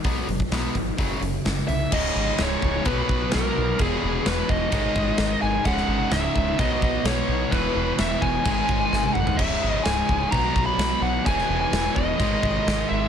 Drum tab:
CC |----------------|x---x---x---x---|x---x---x---x---|x---x---x---x---|
HH |o-o-o-o-o-o-o-o-|----------------|----------------|----------------|
SD |----o-------oo--|----o-------o---|----o-------o---|-o--o-------o---|
T1 |----------------|----------------|----------------|----------------|
T2 |----------------|----------------|----------------|----------------|
FT |----------------|----------------|----------------|----------------|
BD |o--o--o-o-------|o-----o-o-o-----|o-----o-o-o-----|o-----o-o-o-----|

CC |x---x---x-------|x---x---x---x---|x---x---x---x---|
HH |----------------|----------------|----------------|
SD |----o-------o---|----o-------o---|-o--o-------o---|
T1 |-------------o--|----------------|----------------|
T2 |--------------o-|----------------|----------------|
FT |---------------o|----------------|----------------|
BD |o-----o-o-o-----|o-----o-o-o-----|o-----o-o-o-----|